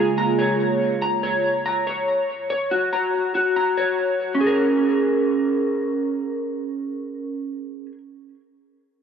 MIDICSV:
0, 0, Header, 1, 3, 480
1, 0, Start_track
1, 0, Key_signature, -5, "minor"
1, 0, Tempo, 422535
1, 1163, Time_signature, 4, 2, 24, 8
1, 10255, End_track
2, 0, Start_track
2, 0, Title_t, "Clean electric guitar"
2, 0, Program_c, 0, 27
2, 0, Note_on_c, 0, 68, 72
2, 0, Note_on_c, 0, 73, 82
2, 0, Note_on_c, 0, 82, 87
2, 188, Note_off_c, 0, 82, 0
2, 202, Note_on_c, 0, 82, 95
2, 424, Note_off_c, 0, 73, 0
2, 437, Note_on_c, 0, 73, 79
2, 1146, Note_off_c, 0, 82, 0
2, 1160, Note_off_c, 0, 73, 0
2, 1160, Note_on_c, 0, 82, 108
2, 1164, Note_off_c, 0, 68, 0
2, 1399, Note_on_c, 0, 73, 92
2, 1868, Note_off_c, 0, 82, 0
2, 1881, Note_on_c, 0, 82, 77
2, 2110, Note_off_c, 0, 73, 0
2, 2124, Note_on_c, 0, 73, 81
2, 2827, Note_off_c, 0, 73, 0
2, 2840, Note_on_c, 0, 73, 79
2, 3080, Note_on_c, 0, 66, 89
2, 3311, Note_off_c, 0, 82, 0
2, 3325, Note_on_c, 0, 82, 86
2, 3790, Note_off_c, 0, 66, 0
2, 3803, Note_on_c, 0, 66, 81
2, 4034, Note_off_c, 0, 82, 0
2, 4048, Note_on_c, 0, 82, 86
2, 4273, Note_off_c, 0, 73, 0
2, 4286, Note_on_c, 0, 73, 83
2, 4936, Note_on_c, 0, 61, 82
2, 4999, Note_off_c, 0, 66, 0
2, 5004, Note_on_c, 0, 68, 72
2, 5005, Note_off_c, 0, 73, 0
2, 5005, Note_off_c, 0, 82, 0
2, 5072, Note_on_c, 0, 70, 89
2, 8926, Note_off_c, 0, 61, 0
2, 8994, Note_off_c, 0, 68, 0
2, 9062, Note_off_c, 0, 70, 0
2, 10255, End_track
3, 0, Start_track
3, 0, Title_t, "Ambient pad"
3, 0, Program_c, 1, 92
3, 0, Note_on_c, 1, 49, 82
3, 0, Note_on_c, 1, 56, 76
3, 0, Note_on_c, 1, 58, 72
3, 0, Note_on_c, 1, 65, 78
3, 0, Note_on_c, 1, 68, 90
3, 1116, Note_off_c, 1, 68, 0
3, 1117, Note_off_c, 1, 49, 0
3, 1125, Note_off_c, 1, 65, 0
3, 1126, Note_off_c, 1, 56, 0
3, 1127, Note_off_c, 1, 58, 0
3, 10255, End_track
0, 0, End_of_file